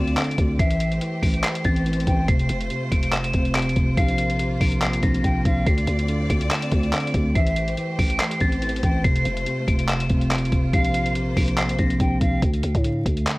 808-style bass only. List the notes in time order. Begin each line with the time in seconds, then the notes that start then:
Already playing: D2
0.38 D2
0.59 A1
1.23 A1
1.65 A1
2.07 A1
2.28 F1
2.49 F1
2.92 F1
3.34 F1
3.76 F1
3.97 A#1
4.61 A#1
5.03 A#1
5.24 A#1
5.45 A#1
5.66 D2
5.87 D2
6.30 D2
6.72 D2
7.14 D2
7.35 A1
7.99 A1
8.41 A1
8.83 A1
9.04 F1
9.26 F1
9.68 F1
10.10 F1
10.52 F1
10.73 A#1
11.37 A#1
11.79 A#1
12.00 A#1
12.21 A#1
12.42 D2
12.64 D2
12.75 A2
13.06 D2